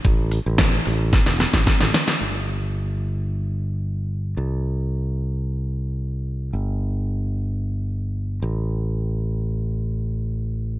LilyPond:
<<
  \new Staff \with { instrumentName = "Fingered electric bass" } { \clef bass \time 4/4 \key a \phrygian \tempo 4 = 111 a,,8 r16 a,,8 r16 a,,8 r16 e,,16 r16 a,,16 r16 a,,16 r8 | g,,1 | c,1 | g,,2.~ g,,8 a,,8~ |
a,,1 | }
  \new DrumStaff \with { instrumentName = "Drums" } \drummode { \time 4/4 bd8 hho8 <bd sn>8 hho8 <bd sn>16 <hho sn>16 <hho sn>16 <bd sn>16 <bd sn>16 sn16 <hho sn>16 sn16 | r4 r4 r4 r4 | r4 r4 r4 r4 | r4 r4 r4 r4 |
r4 r4 r4 r4 | }
>>